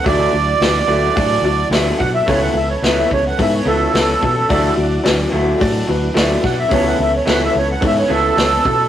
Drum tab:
HH |o-o-o-o-|o-o-o-o-|o-o-o-o-|o-o-o-o-|
SD |--o---o-|--o---o-|--o---oo|--o---o-|
BD |o---o--o|o--oo--o|o---o--o|o---o--o|